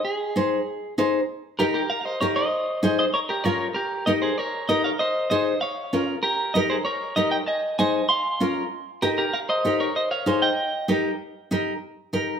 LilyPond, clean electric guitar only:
\new Staff \with { instrumentName = "Clean electric guitar" } { \time 4/4 \key ees \mixolydian \tempo 4 = 194 << { aes'2. r4 | r4 bes'8 bes'8 f''16. f''32 ees''8 des''8 ees''8~ | ees''4. ees''8 des''8 bes'8 des''8. r16 | bes'4 ees''8 c''8 des''4 ees''8 f''8 |
ees''4 ees''4 f''4. r8 | bes'4 ees''8 c''8 des''4 ees''8 g''8 | aes''4 aes''4 c'''4. r8 | r4 bes'8 bes'8 f''8 ees''4 des''8 |
ees''8 f''4 g''4. r4 | r1 | } \\ { r1 | r4 g'8 g'8 bes'8 c''8 bes'8 c''8~ | c''4. c''8 bes'8 g'8 bes'8. r16 | g'4 bes'8 aes'8 bes'4 bes'8 des''8 |
c''4 c''4 des''4. r8 | g'4 bes'8 aes'8 bes'4 bes'8 ees''8 | ees''4 ees''4 f''4. r8 | r4 g'8 g'8 bes'8 c''4 bes'8 |
c''8 des''4 ees''4. r4 | r1 | } >> }